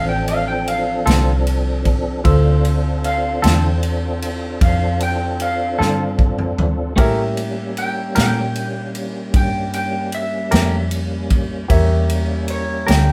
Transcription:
Already playing: fingered electric bass A1, tonewheel organ F3 C4 D4 A4, upright piano F4 A4 C5 E6
0.09 electric slide guitar G5
0.28 electric slide guitar F5, ride
0.48 electric slide guitar G5
0.67 electric slide guitar F5, ride
1.06 fingered electric bass C2, clean electric guitar D3 C4 F4 A4, snare, ride
1.47 ride
1.85 kick, ride
2.24 fingered electric bass D2, tonewheel organ C4 D4 F4 A4, upright piano F4 A4 C5 E6, kick, ride
2.65 ride
3.04 electric slide guitar F5, ride
3.42 fingered electric bass E2, clean electric guitar D3 C4 F4 A4, electric slide guitar G5, snare, ride
3.83 ride
4.22 ride
4.61 fingered electric bass F2, electric slide guitar F5, kick, ride
5.00 electric slide guitar G5, ride
5.40 electric slide guitar F5, ride
5.79 fingered electric bass G2, clean electric guitar D3 C4 F4 A4, snare
6.19 kick
6.39 mid tom
6.58 floor tom
6.96 fingered electric bass A2, tonewheel organ G3 A#3 C#4, clean electric guitar A3 C#4 G4 A#4, upright piano G4 A#4 C#5 E5, kick, ride
7.37 ride
7.77 electric slide guitar G5, ride
8.15 fingered electric bass A#2, clean electric guitar A3 C#4 G4 A#4, electric slide guitar G5, snare, ride
8.55 ride
8.95 ride
9.34 fingered electric bass G2, electric slide guitar G5, kick, ride
9.73 electric slide guitar G5, ride
10.12 electric slide guitar E5, ride
10.51 fingered electric bass F2, clean electric guitar A3 C#4 G4 A#4, snare, ride
10.91 ride
11.30 kick, ride
11.68 fingered electric bass E2, tonewheel organ G3 A#3 C#4, upright piano G4 A#4 C#5 E5, kick, ride
12.09 ride
12.48 electric slide guitar C#5, ride
12.87 fingered electric bass D2, clean electric guitar A3 C#4 G4 A#4, electric slide guitar G5, ride
12.91 snare

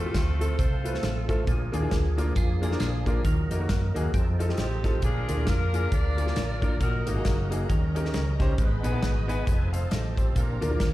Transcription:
Already playing: fingered electric bass E2, tonewheel organ F3 A3 C4 A4, saxophone section A3 C4 F4 A4
0.05 upright piano A3 C4 F4 G4
0.14 fingered electric bass D2, kick, snare, closed hi-hat
0.40 upright piano A3 C4 F4 A4, saxophone section A4, closed hi-hat
0.59 fingered electric bass C2, saxophone section F4 A4 C5, kick, closed hi-hat
0.84 upright piano A3 C4 F4 B4, closed hi-hat
0.93 upright piano A3 C4 F4 A4, snare
1.03 fingered electric bass A1, snare, closed hi-hat
1.28 upright piano A3 C4 F4 A4, kick, closed hi-hat
1.47 fingered electric bass A#1, upright piano A#2, tonewheel organ F3 A#3 D4 G#4, kick, closed hi-hat
1.72 fingered electric bass D#2, upright piano A#3 D4 F4 G#4, closed hi-hat
1.81 upright piano A#3 D4 F4 G#4
1.91 fingered electric bass D2, kick, snare, closed hi-hat
2.17 upright piano A#3 D4 F4 A#4, closed hi-hat
2.36 fingered electric bass F2, clean electric guitar F4 G#4, kick, closed hi-hat
2.61 upright piano A#3 D4 F4 G#4, clean electric guitar A#4, closed hi-hat
2.70 upright piano A#3 D4 F4 A#4, snare
2.80 fingered electric bass A#1, clean electric guitar F4 G#4, snare, closed hi-hat
3.06 upright piano A#3 D4 F4 A#4, kick, closed hi-hat
3.25 fingered electric bass D#2, upright piano D#3, tonewheel organ F#3 A#3 D#4 A#4, kick, closed hi-hat
3.50 fingered electric bass F2, upright piano A#3 D#4 F#4 A#4, closed hi-hat
3.59 upright piano A#3 D#4 F#4 A#4
3.69 fingered electric bass F#2, kick, snare, closed hi-hat
3.94 fingered electric bass D#2, upright piano A#3 D#4 F#4 G#4, closed hi-hat
4.14 fingered electric bass F2, tonewheel organ F3 C4 D#4 G4, kick, closed hi-hat
4.19 tonewheel organ A4
4.39 upright piano C4 D#4 F4 A4, closed hi-hat
4.48 upright piano C4 D#4 F4 G4, snare
4.58 fingered electric bass A1, saxophone section C4 D#4 G4, snare, closed hi-hat
4.83 upright piano C4 D#4 F4 A4, kick, snare, closed hi-hat
5.02 fingered electric bass A#1, upright piano A#2, tonewheel organ F3 A#3 C#4 A#4, saxophone section D4 F4 G#4, string section A#4 D5 F5 A#5, kick, closed hi-hat
5.08 tonewheel organ D4
5.28 fingered electric bass D2, upright piano A#3 D4 F4 A#4, closed hi-hat
5.37 upright piano A#3 D4 F4 A#4
5.47 fingered electric bass F2, saxophone section D4 F4 A#4, kick, snare, closed hi-hat
5.73 upright piano A#3 D4 F4 G#4, closed hi-hat
5.92 fingered electric bass D2, saxophone section F4 A#4 D5, kick, closed hi-hat
6.17 upright piano A#3 D4 F4 G#4, closed hi-hat
6.25 upright piano A#3 D4 F4 G#4, snare
6.36 fingered electric bass A1, snare, closed hi-hat
6.61 upright piano A#3 D4 F4 A#4, kick, closed hi-hat
6.80 fingered electric bass A#1, upright piano A#2, tonewheel organ F#3 A#3 D#4 A#4, saxophone section D#4 F#4 A#4, string section D#5 F#5 A#5, kick, closed hi-hat
7.06 fingered electric bass G#1, upright piano A#3 D#4 F#4 A#4, saxophone section A#3 D#4 F#4, closed hi-hat
7.15 upright piano A#3 D#4 F#4 G#4
7.25 fingered electric bass F#1, kick, snare, closed hi-hat
7.50 upright piano A#3 D#4 F#4 G#4, closed hi-hat
7.68 fingered electric bass D#2, upright piano D#3, tonewheel organ F#3 C#4 D#4 A#4, string section C#5 D#5 G5 A#5, kick, closed hi-hat
7.74 tonewheel organ G3
7.95 upright piano C#4 D#4 G4 A#4, closed hi-hat
8.04 upright piano C#4 D#4 G4 A#4, snare
8.14 fingered electric bass C#2, snare, closed hi-hat
8.39 upright piano C#4 D#4 G4 C5, kick, snare, closed hi-hat
8.57 fingered electric bass G#1, upright piano G#2, tonewheel organ G#3 B3 D#4 A#4, string section B4 G#5 B5, kick, closed hi-hat
8.64 tonewheel organ B4
8.83 fingered electric bass A#1, upright piano B3 D#4 G#4 B4, closed hi-hat
8.93 upright piano B3 D#4 G#4 B4
9.02 fingered electric bass G#1, tonewheel organ F#4 D#5, kick, snare, closed hi-hat
9.28 upright piano B3 D#4 G#4 B4, tonewheel organ B4 G#5, closed hi-hat
9.45 fingered electric bass F1, tonewheel organ F3 C4 D#4 G4, string section C5 F5 A5, kick, closed hi-hat
9.51 tonewheel organ A4
9.73 upright piano C5 F5, closed hi-hat
9.91 fingered electric bass A1, tonewheel organ G4, upright piano A4 D#5, snare, closed hi-hat
10.17 tonewheel organ C4 A4, upright piano G4 C5, kick, closed hi-hat
10.35 fingered electric bass A#1, upright piano A#2, tonewheel organ F3 A#3 D4 A4, string section A#4 D5 A#5, kick, closed hi-hat
10.41 tonewheel organ A#4
10.61 fingered electric bass D2, upright piano A#3 D4 F4 A#4, closed hi-hat
10.70 upright piano A#3 D4 F4 A#4
10.80 fingered electric bass D#2, kick, snare, closed hi-hat

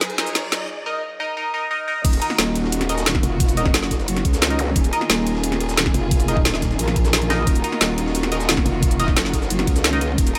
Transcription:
Already playing: string section F#3 D#4 F4 G#4, ambient pad F#3 D#4 F5, riser
0.01 snare, closed hi-hat, shaker
0.10 closed hi-hat
0.18 synth stab D#4 A#4 D#5, snare, closed hi-hat
0.27 shaker
0.35 snare, closed hi-hat, shaker
0.52 snare, closed hi-hat
0.86 synth stab D#4 A#4 D#5
1.20 synth stab D#4 A#4 D#5
1.37 synth stab D#4 A#4 D#5
1.54 synth stab D#4 A#4 D#5
1.71 synth stab D#4 A#4 D#5
1.88 synth stab D#4 A#4 D#5
2.04 wobble bass D#1, string section D#3 A#3 F4 F#4, kick, closed hi-hat, crash, ride, shaker
2.13 closed hi-hat, ride, shaker
2.22 synth stab D#4 A#4 D#5, closed hi-hat, ride, shaker
2.30 snare
2.39 wobble bass D#1, snare, closed hi-hat, open hi-hat, shaker
2.55 closed hi-hat, ride, shaker
2.64 snare
2.72 closed hi-hat, ride, shaker
2.81 snare, closed hi-hat
2.89 synth stab D#4 A#4 D#5, closed hi-hat, ride
2.98 snare, shaker
3.06 snare, closed hi-hat, ride, shaker
3.15 kick, snare, ride
3.23 wobble bass F1, closed hi-hat, ride
3.40 kick, closed hi-hat, ride, shaker
3.49 closed hi-hat, shaker
3.57 synth stab D#4 A#4 D#5, closed hi-hat, ride, shaker
3.66 kick, snare
3.74 wobble bass F#1, snare, closed hi-hat, ride, shaker
3.83 snare
3.91 kick, snare, closed hi-hat, ride, shaker
3.99 snare, shaker
4.08 closed hi-hat, ride, shaker
4.17 snare, closed hi-hat
4.25 wobble bass C#2, kick, closed hi-hat, ride
4.33 snare, shaker
4.42 snare, closed hi-hat, ride, shaker
4.50 synth stab D#4 A#4 D#5, closed hi-hat, ride
4.59 closed hi-hat, ride, zap
4.76 wobble bass D#1, string section G#4, kick, closed hi-hat, ride, shaker
4.84 closed hi-hat, ride, shaker
4.93 synth stab D#4 A#4 D#5, closed hi-hat, ride, shaker
5.01 snare
5.10 wobble bass D#1, snare, closed hi-hat, open hi-hat, shaker
5.27 closed hi-hat, ride, shaker
5.35 snare
5.44 closed hi-hat, ride, shaker
5.52 snare, closed hi-hat
5.60 closed hi-hat, ride
5.69 snare, shaker
5.77 snare, closed hi-hat, ride, shaker
5.86 kick, snare, ride
5.94 wobble bass F1, closed hi-hat, ride
6.11 kick, closed hi-hat, ride, shaker
6.20 closed hi-hat, shaker
6.28 synth stab D#4 A#4 D#5, closed hi-hat, ride, shaker
6.37 kick
6.45 wobble bass D#1, snare, closed hi-hat, ride, shaker
6.54 snare
6.62 kick, snare, closed hi-hat, ride, shaker
6.71 snare, shaker
6.79 wobble bass A#1, closed hi-hat, ride, shaker
6.88 snare, closed hi-hat
6.96 kick, closed hi-hat, ride
7.05 snare, shaker
7.13 snare, closed hi-hat, ride, shaker
7.22 closed hi-hat, ride
7.30 synth stab D#4 A#4 D#5, snare, closed hi-hat, open hi-hat
7.47 wobble bass D#1, string section F#4, kick, closed hi-hat, ride, shaker
7.55 closed hi-hat, ride, shaker
7.64 synth stab D#4 A#4 D#5, closed hi-hat, ride, shaker
7.72 snare
7.81 wobble bass D#1, snare, closed hi-hat, open hi-hat, shaker
7.98 closed hi-hat, ride, shaker
8.06 snare
8.15 closed hi-hat, ride, shaker
8.23 snare, closed hi-hat
8.32 synth stab D#4 A#4 D#5, closed hi-hat, ride
8.40 snare, shaker
8.49 snare, closed hi-hat, ride, shaker
8.57 kick, snare, ride
8.66 wobble bass F1, closed hi-hat, ride
8.83 kick, closed hi-hat, ride, shaker
8.91 closed hi-hat, shaker
9.00 synth stab D#4 A#4 D#5, closed hi-hat, ride, shaker
9.08 kick, snare
9.16 wobble bass F#1, snare, closed hi-hat, ride, shaker
9.25 snare
9.33 kick, snare, closed hi-hat, ride, shaker
9.42 snare, shaker
9.50 closed hi-hat, ride, shaker
9.59 snare, closed hi-hat
9.67 wobble bass C#2, kick, closed hi-hat, ride
9.76 snare, shaker
9.84 snare, closed hi-hat, ride, shaker
9.93 synth stab D#4 A#4 D#5, closed hi-hat, ride
10.01 closed hi-hat, ride
10.18 wobble bass D#1, string section A#4, kick, closed hi-hat, ride, shaker
10.27 closed hi-hat, ride, shaker
10.35 synth stab D#4 A#4 D#5, closed hi-hat, ride, shaker

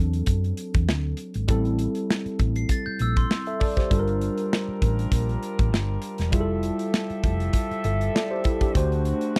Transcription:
Already playing: fingered electric bass E2, tine electric piano F#3 C4 D4 A4
0.14 closed hi-hat
0.26 fingered electric bass F#2, kick, closed hi-hat
0.44 closed hi-hat
0.57 closed hi-hat
0.74 fingered electric bass E2, kick, closed hi-hat
0.89 fingered electric bass D2, snare
1.17 closed hi-hat
1.34 fingered electric bass G#1, closed hi-hat
1.48 fingered electric bass A1, tine electric piano G3 C4 E4 A4, kick, closed hi-hat
1.65 closed hi-hat
1.79 closed hi-hat
1.95 closed hi-hat
2.11 snare
2.26 muted fingered electric bass stroke, closed hi-hat
2.39 fingered electric bass A1, kick, closed hi-hat
2.56 glockenspiel C7, closed hi-hat
2.69 glockenspiel A6, kick, closed hi-hat
2.86 glockenspiel G6, muted fingered electric bass stroke
2.99 fingered electric bass A#1, glockenspiel E6, closed hi-hat
3.16 glockenspiel C6, kick, closed hi-hat
3.31 snare
3.46 tine electric piano A4 E5, closed hi-hat
3.60 tine electric piano A4 D5, kick, open hi-hat
3.77 tine electric piano G4 C5, kick, snare, closed hi-hat
3.90 fingered electric bass G1, tine electric piano G3 D4 F4 A4, french horn section G3 D4 F4 A#4, kick, closed hi-hat
3.99 tine electric piano A#4
4.08 closed hi-hat
4.21 closed hi-hat
4.38 closed hi-hat
4.53 snare
4.68 muted fingered electric bass stroke
4.82 fingered electric bass A1, kick, closed hi-hat
4.99 closed hi-hat
5.12 fingered electric bass A#1, kick, closed hi-hat
5.29 closed hi-hat
5.43 closed hi-hat
5.59 fingered electric bass A1, kick, closed hi-hat
5.72 fingered electric bass G1, snare
6.02 closed hi-hat
6.18 fingered electric bass E1, snare, closed hi-hat
6.31 fingered electric bass F1, french horn section F3 G4 A4 E5, tine electric piano G3 E4 F4 G#4, kick, closed hi-hat
6.40 tine electric piano A4
6.63 closed hi-hat
6.79 closed hi-hat
6.94 snare
7.10 muted fingered electric bass stroke, closed hi-hat
7.23 fingered electric bass F1, kick, closed hi-hat
7.40 closed hi-hat
7.53 kick, closed hi-hat
7.71 muted fingered electric bass stroke, closed hi-hat
7.84 fingered electric bass G1, tine electric piano A4 E5, closed hi-hat
8.01 closed hi-hat
8.15 tine electric piano A4 D5, snare
8.31 tine electric piano G4 C5
8.44 tine electric piano E4 A4, kick, closed hi-hat
8.61 tine electric piano D4 G4, kick, closed hi-hat
8.74 fingered electric bass D2, french horn section D3 A3 C4 F#4, tine electric piano A3 D4 F#4 C5, kick, closed hi-hat
8.92 closed hi-hat
9.05 closed hi-hat
9.21 closed hi-hat
9.36 snare

